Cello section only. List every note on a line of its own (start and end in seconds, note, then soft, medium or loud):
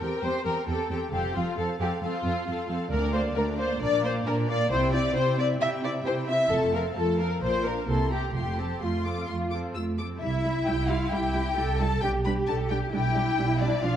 0.00 0.08 E2 soft
0.23 0.31 E2 soft
0.45 0.53 E2 soft
0.67 0.75 E2 soft
0.90 0.98 E2 soft
1.12 1.20 F2 medium
1.34 1.42 F2 soft
1.57 1.65 F2 soft
1.79 1.87 F2 soft
2.01 2.09 F2 medium
2.24 2.32 F2 medium
2.47 2.55 F2 medium
2.68 2.76 F2 soft
2.91 3.31 D2 medium
3.35 3.76 D2 medium
3.81 4.21 A#2 medium
4.26 4.66 A#2 medium
4.70 5.10 C3 medium
5.16 5.56 C3 medium
5.61 6.01 C3 medium
6.06 6.46 C3 medium
6.51 6.91 F2 medium
6.97 7.37 F2 soft
7.42 7.83 A#2 medium
7.88 8.29 C3 soft
8.34 8.76 F2 soft
8.81 9.23 F2 soft
9.28 9.69 F2 soft
9.75 10.16 F2 soft
10.21 11.53 E4 medium
11.57 12.03 A4 medium
12.03 12.93 G4 soft
12.93 13.81 E4 medium
13.83 13.96 D4 soft